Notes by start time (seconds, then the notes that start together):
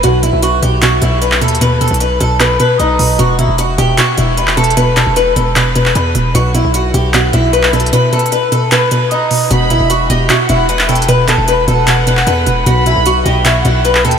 0.03 B1 B2 F#4, closed hi-hat
0.23 B2 E4, closed hi-hat
0.33 B1
0.43 F#4, closed hi-hat
0.62 B1 B2 G4, closed hi-hat
0.82 B2 F#4, clap, closed hi-hat
1.02 B1 B2 E4, closed hi-hat
1.22 B4, closed hi-hat
1.32 clap
1.41 D#2 B2 A4, closed hi-hat
1.48 closed hi-hat
1.55 closed hi-hat
1.61 B2 B4, closed hi-hat
1.81 B2 A4, closed hi-hat
1.88 B1, closed hi-hat
1.94 closed hi-hat
2.00 B4, closed hi-hat
2.20 B1 B2 A4, closed hi-hat
2.40 B2 B4, clap, closed hi-hat
2.60 B2 B4, closed hi-hat
2.80 B1 D#4, closed hi-hat
2.99 B1 B2, open hi-hat
3.19 E1 B2 F#4, closed hi-hat
3.39 G1 B2 E4, closed hi-hat
3.49 E1
3.58 F#4, closed hi-hat
3.78 E1 B2 G4, closed hi-hat
3.98 B2 F#4, clap, closed hi-hat
4.17 E1 B2 E4, closed hi-hat
4.37 B4, closed hi-hat
4.47 clap
4.57 B2 A4, closed hi-hat
4.64 closed hi-hat
4.70 closed hi-hat
4.77 B2 B4, closed hi-hat
4.97 B2 A4, clap, closed hi-hat
5.07 E1
5.16 B4, closed hi-hat
5.36 E1 B2 A4, closed hi-hat
5.56 B2 B4, clap, closed hi-hat
5.75 B2 B4, closed hi-hat
5.86 clap
5.95 E2 B4, closed hi-hat
6.15 E1 B2, closed hi-hat
6.35 B1 B2 F#4, closed hi-hat
6.55 B2 E4, closed hi-hat
6.65 B1
6.74 F#4, closed hi-hat
6.94 B1 B2 G4, closed hi-hat
7.14 B2 F#4, clap, closed hi-hat
7.33 B1 B2 E4, closed hi-hat
7.53 B4, closed hi-hat
7.63 clap
7.73 B2 A4, closed hi-hat
7.80 closed hi-hat
7.86 closed hi-hat
7.93 B2 B4, closed hi-hat
8.13 B2 A4, closed hi-hat
8.19 closed hi-hat
8.26 closed hi-hat
8.32 B4, closed hi-hat
8.52 B2 A4, closed hi-hat
8.72 B2 B4, clap, closed hi-hat
8.91 B2 B4, closed hi-hat
9.11 D#4, closed hi-hat
9.31 B2, open hi-hat
9.51 E1 B2 F#4 B5, closed hi-hat
9.70 G1 B2 E4, closed hi-hat
9.80 E1
9.90 F#4, closed hi-hat
10.10 E1 B2 G4 D#5, closed hi-hat
10.30 B2 F#4 E5, clap, closed hi-hat
10.49 E1 B2 E4 F#5, closed hi-hat
10.69 B4, closed hi-hat
10.79 clap
10.89 B2 A4 G5, closed hi-hat
10.95 closed hi-hat
11.02 closed hi-hat
11.09 B2 B4, closed hi-hat
11.28 B2 A4, clap, closed hi-hat
11.38 E1
11.48 B4, closed hi-hat
11.68 E1 B2 A4 F#5, closed hi-hat
11.87 B2 B4, clap, closed hi-hat
12.07 B2 B4, closed hi-hat
12.17 clap
12.27 E2 B4, closed hi-hat
12.46 E1 B2, closed hi-hat
12.66 B1 B2 F#4 B5, closed hi-hat
12.86 B2 E4, closed hi-hat
12.96 B1
13.06 F#4, closed hi-hat
13.26 B1 B2 G4 D#5, closed hi-hat
13.45 B2 F#4 E5, clap, closed hi-hat
13.65 B1 B2 E4 F#5, closed hi-hat
13.85 B4, closed hi-hat
13.95 clap
14.04 D#2 B2 A4 G5, closed hi-hat
14.11 closed hi-hat